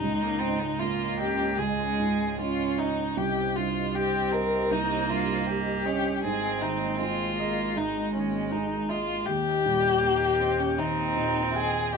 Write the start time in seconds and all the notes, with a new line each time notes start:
Already playing: C#4 D#4 D#5
0.02 C#2 G#3 F4
0.23 A#3
0.40 G#2 C4
0.62 G#3
0.79 A#3 F4
1.19 G4 D#5
1.58 C#2 G#3 G#4
1.99 G#2
2.40 C#4 F4
2.78 D#4 D#5
3.17 C2 G4 C5 D#5
3.56 G2 F4
3.94 C4 G4
4.32 A#4 D#5
4.71 C2 A#3 D#4
5.10 G2 F4
5.46 G4
5.85 C#4 D#5
6.23 G#1 G#2 A#3 C4 G#4
6.61 D#3 D#4
6.99 F4 G#4
7.37 A#3 D#5
7.76 G#2 G#3 D#4
8.14 D#3 C#4
8.51 D#4 G#4
8.89 F4 D#5
9.26 D#2 G4 D#5 G5
9.65 A#2 G3
10.02 A#3 G4
10.40 C4 D#5
10.59 C#4
10.78 D#2 C4 D#4
11.16 A#2
11.55 G#4 G5
11.92 G4 D#5